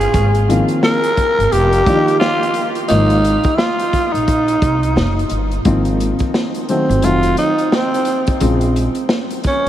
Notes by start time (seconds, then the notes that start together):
Already playing: G#4
0.01 closed hi-hat
0.14 G#1, kick, closed hi-hat
0.35 closed hi-hat
0.49 D#3 F3 A#3 C4, closed hi-hat
0.68 closed hi-hat
0.83 A#4, snare
1.04 closed hi-hat
1.17 kick, closed hi-hat
1.38 G1, closed hi-hat
1.52 F1 G4, closed hi-hat
1.73 closed hi-hat
1.86 D#3 F3 A#3 D4, kick, closed hi-hat
1.94 D#4
2.08 closed hi-hat
2.20 F4, snare
2.43 closed hi-hat
2.54 closed hi-hat
2.75 closed hi-hat
2.88 G#1 D#3 F3 A#3 D#4, closed hi-hat
3.10 closed hi-hat
3.24 closed hi-hat
3.43 kick, closed hi-hat
3.55 E4 F4, snare
3.79 closed hi-hat
3.93 kick, closed hi-hat
4.12 A#1 D#4, closed hi-hat
4.28 kick, closed hi-hat
4.48 closed hi-hat
4.62 C2, kick, closed hi-hat
4.83 closed hi-hat
4.96 F#1, snare
5.19 closed hi-hat
5.29 G1, closed hi-hat
5.51 closed hi-hat
5.65 G#1 D#3 F3 A#3 C4, kick, closed hi-hat
5.85 closed hi-hat
6.00 closed hi-hat
6.19 kick, closed hi-hat
6.34 snare
6.54 closed hi-hat
6.69 D#3 F#3 A3 C4, closed hi-hat
6.89 G1, closed hi-hat
7.02 F1 D#3 F#3 A3 C4 F4, closed hi-hat
7.23 closed hi-hat
7.37 D#4, closed hi-hat
7.58 closed hi-hat
7.72 C4, snare
7.94 closed hi-hat
8.05 closed hi-hat
8.27 kick, closed hi-hat
8.40 A#1 C#3 F3 G#3 C4, kick, closed hi-hat
8.61 closed hi-hat
8.76 closed hi-hat
8.95 closed hi-hat
9.09 snare
9.30 closed hi-hat
9.44 C#4, kick, snare, closed hi-hat